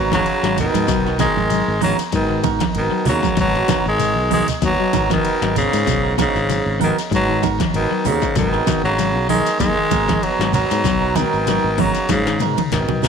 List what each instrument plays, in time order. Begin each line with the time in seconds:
Already playing: fingered electric bass G#1, trombone B2, clean electric guitar B3 D#4 F#4 A#4
0.11 trombone C#3, clean electric guitar D#3, tenor saxophone F#3, kick, snare, high conga, shekere
0.26 ride bell, shekere
0.43 fingered electric bass G#1, clean electric guitar F#3, snare
0.56 tenor saxophone D#3, clean electric guitar B3 D#4 F#4, ride bell, low conga, shekere
0.61 trombone B2
0.74 fingered electric bass G#2, clean electric guitar G#3, ride bell, high conga, shekere
0.88 fingered electric bass B1, clean electric guitar F#3, kick, snare, ride bell, low conga, shekere
1.05 clean electric guitar D#4 F#4 A#4, snare
1.19 clean electric guitar D#3 B3 F#4 A#4, trombone D#3, tenor saxophone G#3, muted clean electric guitar stroke, kick, snare, ride bell, high conga, shekere
1.37 fingered electric bass G#1, high conga, shekere
1.50 clean electric guitar F#3, ride bell, shekere
1.68 fingered electric bass G#1
1.81 clean electric guitar D#3 B3 D#4 F#4 A#4, tenor saxophone F#3, open hi-hat, high conga, shekere
1.86 trombone C#3
1.99 ride bell, shekere
2.12 fingered electric bass G#2, tenor saxophone D#3, clean electric guitar F#3, kick, ride bell, shekere
2.16 trombone B2
2.30 clean electric guitar D#3
2.43 clean electric guitar B3 D#4 F#4 A#4, kick, ride bell, high conga, shekere
2.60 clean electric guitar D#3, kick, snare, ride bell, high conga, shekere
2.75 fingered electric bass G#1, trombone B2, tenor saxophone D#3, ride bell, shekere
2.91 clean electric guitar F#3, muted fingered electric bass stroke
3.05 fingered electric bass D#2, tenor saxophone F#3, clean electric guitar B3 D#4 F#4 A#4, snare, open hi-hat, low conga, shekere
3.10 trombone C#3
3.23 clean electric guitar G#3, kick, high conga, shekere
3.37 fingered electric bass G#1, trombone B2, clean electric guitar F#3, tenor saxophone F#3, kick, snare, ride bell, low conga, shekere
3.55 snare
3.68 clean electric guitar D#3 B3 D#4 F#4 A#4, kick, snare, ride bell, high conga, shekere
3.86 fingered electric bass G#1, trombone D#3, tenor saxophone G#3, shekere
3.98 clean electric guitar D#3, ride bell, shekere
4.17 fingered electric bass B1
4.30 clean electric guitar D#3 B3 D#4 F#4, trombone D#3, tenor saxophone G#3, open hi-hat, high conga, shekere
4.48 ride bell, low conga, shekere
4.62 fingered electric bass D#2, trombone B2, clean electric guitar F#3, tenor saxophone F#3, kick, snare, ride bell, shekere
4.80 clean electric guitar F#3
4.93 fingered electric bass G#1, clean electric guitar B3 D#4 F#4 A#4, kick, snare, ride bell, high conga, shekere
5.10 trombone B2, clean electric guitar D#3, tenor saxophone D#3, kick, snare, high conga, shekere
5.25 ride bell, shekere
5.42 fingered electric bass G#1, clean electric guitar F#3, snare
5.55 trombone G#2, tenor saxophone C#3, clean electric guitar B3 D#4 A#4, muted clean electric guitar stroke, ride bell, low conga, shekere
5.73 fingered electric bass G#2, clean electric guitar G#3, ride bell, shekere
5.86 fingered electric bass B1, clean electric guitar F#3, kick, ride bell, low conga, shekere
6.03 clean electric guitar D#4 F#4 A#4
6.18 trombone G#2, tenor saxophone C#3, clean electric guitar B3 D#4 F#4 A#4, muted clean electric guitar stroke, kick, snare, ride bell, high conga, shekere
6.35 fingered electric bass G#1, snare, shekere
6.49 clean electric guitar F#3, ride bell, shekere
6.66 fingered electric bass G#1
6.80 trombone B2, clean electric guitar D#3 B3 D#4 F#4 A#4, tenor saxophone D#3, open hi-hat, high conga, shekere
6.99 ride bell, shekere
7.11 fingered electric bass G#2, trombone B2, clean electric guitar F#3, kick, ride bell, shekere
7.15 tenor saxophone F#3
7.29 clean electric guitar D#3
7.42 clean electric guitar B3 D#4 F#4 A#4, kick, ride bell, high conga, shekere
7.60 clean electric guitar D#3, kick, snare, ride bell, high conga, shekere
7.74 fingered electric bass G#1, trombone B2, tenor saxophone D#3, ride bell, shekere
7.91 clean electric guitar F#3
8.05 fingered electric bass D#2, trombone G#2, tenor saxophone C#3, clean electric guitar B3 D#4 F#4 A#4, open hi-hat, low conga, shekere
8.22 clean electric guitar G#3, kick, snare, shekere
8.36 fingered electric bass G#1, trombone B2, tenor saxophone D#3, clean electric guitar F#3, kick, snare, ride bell, low conga, shekere
8.53 clean electric guitar F#4 A#4, snare
8.66 clean electric guitar D#3 B3 D#4 F#4, muted clean electric guitar stroke, kick, snare, ride bell, high conga, shekere
8.84 fingered electric bass G#1, trombone C#3, tenor saxophone F#3, snare, shekere
8.98 clean electric guitar F#3, snare, ride bell, shekere
9.16 fingered electric bass B1
9.28 clean electric guitar D#3 B3 D#4 F#4 A#4, trombone D#3, tenor saxophone G#3, open hi-hat, high conga, shekere
9.46 ride bell, shekere
9.60 fingered electric bass D#2, trombone D#3, clean electric guitar F#3, tenor saxophone G#3, kick, ride bell, high conga, shekere
9.78 clean electric guitar D#3
9.91 fingered electric bass G#1, clean electric guitar B3 D#4 F#4 A#4, kick, ride bell, high conga, shekere
10.08 clean electric guitar D#3, kick, snare, high conga, shekere
10.22 trombone B2, tenor saxophone F#3, ride bell, shekere
10.39 fingered electric bass G#1, clean electric guitar F#3, snare
10.53 trombone B2, tenor saxophone F#3, clean electric guitar B3 F#4 A#4, ride bell, low conga, shekere
10.70 fingered electric bass G#2, clean electric guitar G#3, snare, ride bell, shekere
10.84 fingered electric bass B1, clean electric guitar F#3, kick, snare, ride bell, low conga, shekere
11.01 clean electric guitar D#4 F#4 A#4
11.15 trombone B2, clean electric guitar D#3 B3 D#4 F#4 A#4, tenor saxophone D#3, high tom, ride bell, high conga, shekere
11.33 fingered electric bass G#1, shekere
11.46 clean electric guitar F#3 B3 D#4 F#4 A#4, snare, ride bell, shekere
11.64 fingered electric bass G#1
11.78 trombone C#3, clean electric guitar D#3 B3 D#4 F#4 A#4, tenor saxophone F#3, kick, open hi-hat, high conga, shekere
11.95 ride bell, shekere
12.09 fingered electric bass G#2, trombone G#2, tenor saxophone C#3, clean electric guitar F#3, kick, snare, ride bell, high conga, shekere
12.27 clean electric guitar D#3, snare
12.40 clean electric guitar B3 D#4 F#4 A#4, mid tom, ride bell, shekere
12.57 clean electric guitar D#3, mid tom, ride bell, high conga, shekere
12.72 fingered electric bass G#1, trombone B2, tenor saxophone D#3, snare, ride bell, low conga, shekere
12.89 clean electric guitar F#3, floor tom, low conga
13.02 fingered electric bass D#2, clean electric guitar B3 D#4 F#4 A#4, snare, open hi-hat, low conga, shekere